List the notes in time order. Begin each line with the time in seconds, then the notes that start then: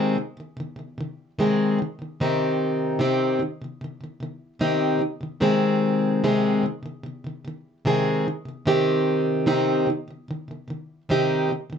Already playing: C3 D#3 G#3 C4 G#4
0.15 C3 D#3
0.37 C3 D#3
0.57 C3 D#3
0.76 C3 D#3
0.98 C3 D#3
1.39 C3 D#3 G#3 C4 G#4
1.79 C3 D#3
1.99 C3 D#3
2.20 C3 D#3 C4 D#4 G4
2.99 C3 D#3 C4 D#4 G4
3.39 C3 D#3
3.62 C3 D#3
3.81 C3 D#3
4.01 C3 D#3
4.20 C3 D#3
4.59 C3 D#3 C4 D#4 G4
4.99 C3 D#3
5.21 C3 D#3
5.40 C3 D#3 G#3 C4 G#4
6.24 C3 D#3 G#3 C4 G#4
6.63 C3 D#3
6.83 C3 D#3
7.03 C3 D#3
7.24 C3 D#3
7.45 C3 D#3
7.85 C3 D#3 G#3 C4 G#4
8.25 C3 D#3
8.45 C3 D#3
8.65 C3 D#3 C4 D#4 G4
9.46 C3 D#3 C4 D#4 G4
9.87 C3 D#3
10.08 C3 D#3
10.28 C3 D#3
10.48 C3 D#3
10.68 C3 D#3
11.09 C3 D#3 C4 D#4 G4
11.49 C3 D#3
11.70 C3 D#3